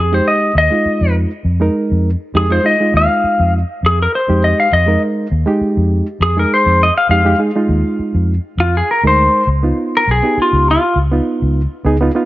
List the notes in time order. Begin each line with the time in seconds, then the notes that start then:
Already playing: F2
0.00 G#4
0.12 G#3 D#4 G4 C5
0.28 D#5
0.55 D#2 D#5
0.70 G#3 D#4 F4
0.85 muted fingered electric bass stroke
1.01 F2
1.44 F2
1.60 G#3 D#4 A#4
1.91 F2
2.34 F2 G#3 D#4 G4 G#4
2.49 G#3 D#4 F4 C5
2.63 G#3 D#4 F4 D#5
2.80 G#3 D#4 F4
2.94 D#2 F5
3.24 muted fingered electric bass stroke
3.39 F2
3.83 F2 G#4
4.02 A#4
4.15 C5
4.28 F2 G#3 D#4 G4
4.44 D#5
4.60 F5
4.72 F2 D#5
4.86 G#3 D#4 A#4
5.31 D#2
5.46 G#3 D#4 G4
5.61 muted fingered electric bass stroke
5.77 F2
6.20 F2 G#4
6.36 G#3 D#4 G#4 A#4
6.54 C5
6.66 F2
6.83 D#5
6.98 F5
7.09 F2 G#3 D#4 G4 F5
7.25 G#3 D#4 G4
7.38 G#3 D#4 G#4
7.55 G#3 D#4 F4
7.68 D#2
7.99 muted fingered electric bass stroke
8.14 F2
8.57 F2 F4
8.77 G#4
8.91 A#4
9.03 D2 G#3 D#4 A#4
9.07 C5
9.47 C#2
9.63 B3 D#4 F4
9.97 A#4
10.07 B1 G#4
10.23 B3 D#4 G4
10.37 muted fingered electric bass stroke
10.42 F4
10.53 C#2
10.71 F4
10.95 C#2
11.12 B3 D#4 F4
11.42 C#2
11.84 C#2 B3 D#4 G#4
12.01 B3 D#4 F4
12.15 B3 D#4 F4